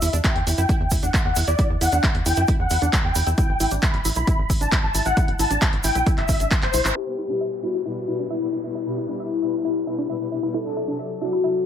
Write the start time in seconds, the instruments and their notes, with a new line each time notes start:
Already playing: supersaw synth E5
0.02 analog synth bass E2, synth pluck E4, open hi-hat, shaker
0.13 analog synth bass E2, synth pluck D4, closed hi-hat, shaker
0.24 synth pluck E5, supersaw synth G5, kick, clap, closed hi-hat, shaker
0.36 analog synth bass E2, closed hi-hat
0.47 analog synth bass E2, synth pluck E4, open hi-hat, shaker
0.58 analog synth bass F#2, synth pluck E4, supersaw synth G5, closed hi-hat, shaker
0.69 synth pluck E4, kick, closed hi-hat, shaker
0.80 analog synth bass E2
0.91 analog synth bass E2, synth pluck E4, kick, open hi-hat, shaker
1.03 analog synth bass E2, synth pluck D4, supersaw synth F#5, closed hi-hat, shaker
1.14 synth pluck E5, kick, clap, closed hi-hat, shaker
1.25 analog synth bass E2, supersaw synth F#5
1.36 analog synth bass E2, synth pluck E4, open hi-hat, shaker
1.48 analog synth bass E2, synth pluck E4, supersaw synth D5, closed hi-hat, shaker
1.59 synth pluck E4, kick, closed hi-hat, shaker
1.70 analog synth bass E2
1.81 analog synth bass E2, synth pluck E4, supersaw synth F#5, open hi-hat, shaker
1.92 analog synth bass E2, synth pluck D4, closed hi-hat, shaker
2.03 synth pluck E5, kick, clap, closed hi-hat, shaker
2.15 analog synth bass E2, closed hi-hat
2.26 analog synth bass E2, synth pluck E4, supersaw synth G5, open hi-hat, shaker
2.36 analog synth bass F#2, synth pluck E4, closed hi-hat, shaker
2.47 synth pluck E4, kick, closed hi-hat, shaker
2.59 analog synth bass E2, supersaw synth F#5
2.70 analog synth bass E2, synth pluck E4, open hi-hat, shaker
2.82 analog synth bass E2, synth pluck D4, closed hi-hat, shaker
2.93 synth pluck E5, kick, clap, closed hi-hat, shaker
3.04 analog synth bass E2, supersaw synth G5
3.15 analog synth bass E2, synth pluck E4, open hi-hat, shaker
3.27 analog synth bass E2, synth pluck E4, closed hi-hat, shaker
3.38 synth pluck E4, supersaw synth G5, kick, closed hi-hat, shaker
3.49 analog synth bass A1
3.60 analog synth bass A1, synth pluck E4, open hi-hat, shaker
3.71 analog synth bass A1, synth pluck D4, closed hi-hat, shaker
3.82 synth pluck E5, supersaw synth B5, kick, clap, closed hi-hat, shaker
3.94 analog synth bass A1, closed hi-hat
4.05 analog synth bass A1, synth pluck E4, open hi-hat, shaker
4.15 analog synth bass B1, synth pluck E4, supersaw synth B5, closed hi-hat, shaker
4.27 synth pluck E4, kick, closed hi-hat, shaker
4.39 analog synth bass A1
4.50 analog synth bass A1, synth pluck E4, kick, open hi-hat, shaker
4.61 analog synth bass A1, synth pluck D4, supersaw synth A5, closed hi-hat, shaker
4.72 synth pluck E5, kick, clap, closed hi-hat, shaker
4.83 analog synth bass A1, supersaw synth A5
4.95 analog synth bass A1, synth pluck E4, open hi-hat, shaker
5.05 analog synth bass A1, synth pluck E4, supersaw synth F#5, closed hi-hat, shaker
5.17 synth pluck E4, kick, closed hi-hat, shaker
5.28 analog synth bass A1, closed hi-hat
5.39 analog synth bass A1, synth pluck E4, supersaw synth A5, open hi-hat, shaker
5.50 analog synth bass A1, synth pluck D4, closed hi-hat, shaker
5.61 synth pluck E5, kick, clap, closed hi-hat, shaker
5.73 analog synth bass A1, closed hi-hat
5.84 analog synth bass A1, synth pluck E4, supersaw synth G5, open hi-hat, shaker
5.95 analog synth bass B1, synth pluck E4, closed hi-hat, shaker
6.06 synth pluck E4, kick, closed hi-hat, shaker
6.18 analog synth bass A1, supersaw synth E5, clap, closed hi-hat
6.28 analog synth bass A1, synth pluck E4, kick, open hi-hat, shaker
6.40 analog synth bass A1, synth pluck D4, closed hi-hat, shaker
6.51 synth pluck E5, kick, clap, closed hi-hat, shaker
6.62 analog synth bass A1, supersaw synth C5, clap, closed hi-hat
6.74 analog synth bass B1, synth pluck E4, open hi-hat, shaker
6.85 analog synth bass A1, synth pluck E4, clap, closed hi-hat, shaker
6.96 synth pluck E4, soft synth lead G4, crash, downlifter
7.07 string section B2 G3 E4 B4
7.18 synth pluck E4
7.30 string section B2 G3 E4 B4, synth pluck D4
7.41 synth pluck E5
7.63 string section B2 G3 E4 B4, synth pluck E4, soft synth lead F#4
7.74 synth pluck E4
7.86 string section B2 G3 E4 B4, synth pluck E4
8.08 string section B2 G3 E4 B4, synth pluck E4
8.19 synth pluck D4
8.30 string section B2 G3 E4 B4, soft synth lead E4, synth pluck E5
8.42 string section B2 G3 E4 B4
8.53 string section B2 G3 E4 B4, synth pluck E4
8.64 string section B2 G3 E4 B4, synth pluck E4
8.75 synth pluck E4
8.86 string section B2 G3 E4 B4
8.98 synth pluck E4
9.09 string section B2 G3 E4 B4, synth pluck D4
9.20 synth pluck E5
9.42 string section B2 G3 E4 B4, synth pluck E4
9.54 synth pluck E4
9.65 string section B2 G3 E4 B4, synth pluck E4
9.87 string section B2 G3 E4 B4, synth pluck E4
9.98 synth pluck D4
10.09 string section B2 G3 E4 B4, synth pluck E5
10.21 string section B2 G3 E4 B4
10.32 string section B2 G3 E4 B4, synth pluck E4
10.43 string section B2 G3 E4 B4, synth pluck E4
10.54 synth pluck E4, soft synth lead A4
10.65 string section C3 F#3 D4 A4
10.77 synth pluck E4
10.88 string section C3 F#3 D4 A4, synth pluck D4
10.99 synth pluck E5
11.21 string section C3 F#3 D4 A4, synth pluck E4, soft synth lead F#4
11.33 synth pluck E4
11.44 string section C3 F#3 D4 A4, synth pluck E4